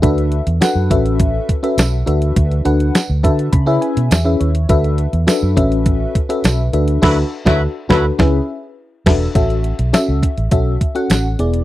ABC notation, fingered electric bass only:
X:1
M:4/4
L:1/16
Q:1/4=103
K:A
V:1 name="Fingered electric bass" clef=bass
D,,3 E,, z F,, A,,,4 z2 B,,,2 D,,2 | D,,2 D,,2 z D,, D,2 C,2 z B,, E,,2 ^D,,2 | D,,3 E,, z F,, A,,,4 z2 B,,,2 D,,2 | D,,2 z D,,2 z D,,2 C,,2 z4 E,,,2 |
A,,,3 B,,, z C,, z A,,, B,,,2 z2 A,,,2 E,,,2 |]